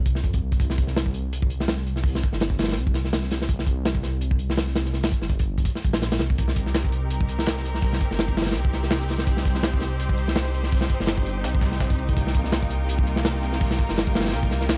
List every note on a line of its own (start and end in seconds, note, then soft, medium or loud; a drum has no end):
0.00 0.22 C2 medium
0.06 kick medium
0.06 closed hi-hat medium
0.15 snare soft
0.24 0.40 F2 medium
0.24 kick medium
0.24 closed hi-hat medium
0.33 kick medium
0.33 closed hi-hat medium
0.42 0.58 C2 medium
0.52 kick medium
0.52 closed hi-hat medium
0.60 2.21 C2 medium
0.60 kick medium
0.60 closed hi-hat medium
0.70 snare soft
0.78 kick medium
0.78 closed hi-hat medium
0.87 snare soft
0.96 snare loud
0.96 closed hi-hat medium
1.06 kick medium
1.14 closed hi-hat medium
1.33 closed hi-hat medium
1.42 kick medium
1.50 closed hi-hat medium
1.60 snare medium
1.68 snare loud
1.68 closed hi-hat medium
1.77 snare soft
1.87 closed hi-hat medium
1.96 snare soft
2.04 kick loud
2.04 open hi-hat medium
2.15 snare medium
2.23 kick medium
2.23 closed hi-hat medium
2.32 2.78 G1 loud
2.32 snare soft
2.40 snare loud
2.40 closed hi-hat medium
2.50 kick medium
2.59 snare medium
2.59 closed hi-hat medium
2.63 snare medium
2.63 closed hi-hat medium
2.68 snare medium
2.68 closed hi-hat medium
2.72 snare medium
2.72 closed hi-hat medium
2.77 3.12 C2 medium
2.77 closed hi-hat medium
2.87 kick medium
2.94 snare soft
2.94 closed hi-hat medium
3.05 snare soft
3.13 3.48 C2 medium
3.13 snare loud
3.13 closed hi-hat medium
3.23 snare soft
3.31 snare medium
3.31 closed hi-hat medium
3.41 snare soft
3.49 5.10 C2 medium
3.49 kick medium
3.49 closed hi-hat medium
3.59 snare soft
3.67 kick medium
3.67 closed hi-hat medium
3.85 snare loud
3.85 closed hi-hat medium
3.95 kick medium
4.03 snare soft
4.03 closed hi-hat medium
4.21 closed hi-hat medium
4.31 kick loud
4.39 closed hi-hat medium
4.50 snare soft
4.57 snare loud
4.57 closed hi-hat medium
4.67 snare soft
4.75 snare medium
4.75 closed hi-hat medium
4.85 snare soft
4.93 snare soft
4.93 closed hi-hat medium
5.03 snare loud
5.03 closed hi-hat medium
5.11 kick loud
5.11 closed hi-hat medium
5.22 5.65 G1 loud
5.22 snare soft
5.29 kick medium
5.29 closed hi-hat medium
5.39 kick loud
5.39 closed hi-hat medium
5.58 kick medium
5.58 closed hi-hat medium
5.65 kick medium
5.65 closed hi-hat medium
5.75 snare soft
5.84 6.19 A#1 medium
5.84 kick medium
5.84 closed hi-hat medium
5.93 snare medium
5.93 closed hi-hat medium
6.02 snare medium
6.02 closed hi-hat medium
6.11 snare loud
6.11 closed hi-hat medium
6.19 6.37 C2 medium
6.19 snare loud
6.19 closed hi-hat medium
6.30 kick medium
6.38 8.00 C2 loud
6.38 12.13 C4 medium
6.38 14.78 D#4 medium
6.38 12.12 G4 medium
6.38 14.78 G4 medium
6.38 9.24 A#4 medium
6.38 14.78 G5 medium
6.38 kick loud
6.38 closed hi-hat medium
6.48 snare medium
6.56 kick medium
6.56 closed hi-hat medium
6.66 snare soft
6.66 closed hi-hat soft
6.74 snare loud
6.74 closed hi-hat medium
6.84 kick medium
6.92 closed hi-hat medium
7.10 closed hi-hat medium
7.21 kick medium
7.29 closed hi-hat medium
7.39 snare medium
7.46 snare loud
7.46 closed hi-hat medium
7.57 snare soft
7.65 closed hi-hat medium
7.75 snare soft
7.82 kick loud
7.82 closed hi-hat medium
7.82 open hi-hat medium
7.93 snare medium
8.00 kick medium
8.00 closed hi-hat medium
8.11 8.57 G1 loud
8.11 snare soft
8.19 snare loud
8.19 closed hi-hat medium
8.28 kick medium
8.28 closed hi-hat medium
8.37 snare medium
8.37 closed hi-hat medium
8.42 snare medium
8.42 closed hi-hat medium
8.46 snare medium
8.46 closed hi-hat medium
8.50 snare medium
8.50 closed hi-hat medium
8.55 8.90 C2 medium
8.55 closed hi-hat medium
8.65 kick medium
8.73 snare soft
8.73 closed hi-hat medium
8.83 snare soft
8.91 9.26 C2 medium
8.91 snare loud
8.91 closed hi-hat medium
9.01 snare soft
9.01 closed hi-hat soft
9.09 snare soft
9.09 closed hi-hat medium
9.19 snare medium
9.27 10.89 C2 loud
9.27 12.14 C5 medium
9.27 kick loud
9.27 closed hi-hat medium
9.37 snare soft
9.45 kick medium
9.45 closed hi-hat medium
9.55 snare soft
9.55 closed hi-hat soft
9.63 snare loud
9.63 closed hi-hat medium
9.73 kick medium
9.80 snare soft
9.80 closed hi-hat medium
10.00 closed hi-hat medium
10.09 kick loud
10.18 closed hi-hat medium
10.28 snare soft
10.35 snare loud
10.35 closed hi-hat medium
10.45 snare soft
10.54 closed hi-hat medium
10.63 snare soft
10.71 kick loud
10.71 closed hi-hat medium
10.71 open hi-hat medium
10.81 snare medium
10.90 kick medium
10.90 closed hi-hat medium
11.00 11.46 G1 loud
11.00 snare soft
11.07 snare loud
11.07 closed hi-hat medium
11.18 kick loud
11.26 closed hi-hat medium
11.44 11.79 C2 medium
11.44 snare loud
11.44 closed hi-hat medium
11.54 kick medium
11.54 closed hi-hat soft
11.61 kick loud
11.61 snare loud
11.61 closed hi-hat medium
11.72 snare soft
11.80 12.15 C2 medium
11.80 kick medium
11.80 snare loud
11.80 closed hi-hat medium
11.90 kick medium
11.90 closed hi-hat medium
11.90 closed hi-hat soft
11.99 closed hi-hat medium
12.08 kick medium
12.08 closed hi-hat medium
12.16 13.78 C2 medium
12.16 14.78 A#3 medium
12.16 14.78 F4 medium
12.16 14.78 A#4 medium
12.16 kick loud
12.16 closed hi-hat medium
12.27 snare soft
12.34 kick medium
12.34 closed hi-hat medium
12.44 snare soft
12.44 closed hi-hat soft
12.52 snare loud
12.52 closed hi-hat medium
12.63 kick medium
12.70 closed hi-hat medium
12.89 closed hi-hat medium
12.99 kick medium
13.07 closed hi-hat medium
13.16 snare medium
13.25 snare loud
13.25 closed hi-hat medium
13.35 snare soft
13.43 closed hi-hat medium
13.53 snare soft
13.61 kick loud
13.61 closed hi-hat medium
13.61 open hi-hat medium
13.71 snare medium
13.78 kick medium
13.78 closed hi-hat medium
13.89 14.35 G1 loud
13.89 snare soft
13.96 snare loud
13.96 closed hi-hat medium
14.07 kick loud
14.07 closed hi-hat medium
14.15 snare medium
14.15 closed hi-hat medium
14.20 snare medium
14.25 snare medium
14.25 closed hi-hat medium
14.28 snare medium
14.28 closed hi-hat medium
14.33 14.68 C2 medium
14.33 closed hi-hat medium
14.43 kick medium
14.51 snare soft
14.51 closed hi-hat medium
14.61 snare soft
14.69 14.78 C2 medium
14.69 snare loud
14.69 closed hi-hat medium